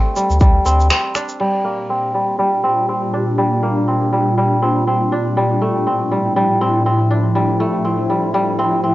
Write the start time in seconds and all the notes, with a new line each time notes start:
Already playing: G3 A3 C4 D4
0.16 G3, shaker
0.30 D2, shaker
0.40 G3, kick, shaker
0.65 D2 C4, shaker
0.80 shaker
0.90 C4, finger snap, shaker
1.15 D4, finger snap, shaker
1.29 shaker
1.40 A#2 G3 D4 G4, crash
1.65 A#3
1.90 C4
2.14 G3
2.39 G3
2.64 C4
2.89 C4
3.14 D4
3.38 G3 F4
3.63 A#3
3.88 C4
4.13 G3
4.38 G3
4.62 C4
4.87 C4
5.12 D4
5.37 A2 F3 G3 E4
5.62 A3
5.87 C4
6.11 G3
6.36 G3
6.61 C4
6.86 C4
7.11 D4
7.35 G3
7.60 A3
7.85 C4
8.10 G3
8.34 G3
8.59 C4
8.84 C4